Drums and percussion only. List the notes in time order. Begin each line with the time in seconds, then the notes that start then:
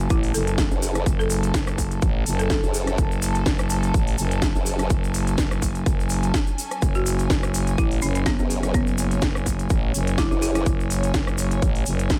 0.10 kick, closed hi-hat, shaker
0.23 open hi-hat
0.34 open hi-hat, shaker
0.47 closed hi-hat, shaker
0.58 kick, snare, closed hi-hat, shaker
0.71 shaker
0.82 open hi-hat, shaker
0.95 cross-stick, closed hi-hat, shaker
1.06 kick, closed hi-hat, shaker
1.20 shaker
1.30 open hi-hat, shaker
1.43 closed hi-hat, shaker
1.54 kick, snare, closed hi-hat, shaker
1.67 cross-stick, shaker
1.78 kick, open hi-hat, shaker
1.91 closed hi-hat, shaker
2.02 kick, closed hi-hat, shaker
2.26 open hi-hat, shaker
2.39 closed hi-hat, shaker
2.50 kick, snare, closed hi-hat, shaker
2.64 shaker
2.74 open hi-hat, shaker
2.87 cross-stick, closed hi-hat, shaker
2.98 kick, closed hi-hat, shaker
3.12 shaker
3.22 open hi-hat, shaker
3.35 closed hi-hat, shaker
3.46 kick, snare, closed hi-hat, shaker
3.59 cross-stick, shaker
3.70 open hi-hat, shaker
3.83 closed hi-hat, shaker
3.94 kick, closed hi-hat, shaker
4.07 open hi-hat
4.18 open hi-hat, shaker
4.31 closed hi-hat, shaker
4.42 kick, snare, closed hi-hat, shaker
4.55 shaker
4.66 open hi-hat, shaker
4.79 cross-stick, closed hi-hat, shaker
4.90 kick, closed hi-hat, shaker
5.04 shaker
5.14 open hi-hat, shaker
5.27 closed hi-hat, shaker
5.38 kick, snare, closed hi-hat, shaker
5.51 cross-stick, shaker
5.62 kick, open hi-hat, shaker
5.75 closed hi-hat, shaker
5.86 kick, closed hi-hat, shaker
6.00 shaker
6.09 open hi-hat, shaker
6.23 closed hi-hat, shaker
6.34 kick, snare, closed hi-hat, shaker
6.47 shaker
6.58 open hi-hat, shaker
6.71 cross-stick, closed hi-hat, shaker
6.82 kick, closed hi-hat, shaker
6.95 shaker
7.06 open hi-hat, shaker
7.19 closed hi-hat, shaker
7.30 kick, snare, closed hi-hat, shaker
7.43 cross-stick, shaker
7.54 open hi-hat, shaker
7.67 closed hi-hat, shaker
7.78 kick, closed hi-hat, shaker
7.91 open hi-hat
8.02 open hi-hat, shaker
8.15 closed hi-hat, shaker
8.26 kick, snare, closed hi-hat, shaker
8.39 shaker
8.50 open hi-hat, shaker
8.63 cross-stick, closed hi-hat, shaker
8.74 kick, closed hi-hat, shaker
8.87 shaker
8.98 open hi-hat, shaker
9.11 closed hi-hat, shaker
9.22 kick, snare, closed hi-hat, shaker
9.35 cross-stick, shaker
9.46 kick, open hi-hat, shaker
9.59 closed hi-hat, shaker
9.70 kick, closed hi-hat, shaker
9.94 open hi-hat, shaker
10.07 closed hi-hat, shaker
10.18 kick, snare, closed hi-hat, shaker
10.32 shaker
10.42 open hi-hat, shaker
10.55 cross-stick, closed hi-hat, shaker
10.66 kick, closed hi-hat, shaker
10.80 shaker
10.90 open hi-hat, shaker
11.03 closed hi-hat, shaker
11.14 kick, snare, closed hi-hat, shaker
11.27 cross-stick, shaker
11.38 open hi-hat, shaker
11.51 closed hi-hat, shaker
11.62 kick, closed hi-hat, shaker
11.75 open hi-hat
11.86 open hi-hat, shaker
11.99 closed hi-hat, shaker
12.10 kick, snare, closed hi-hat, shaker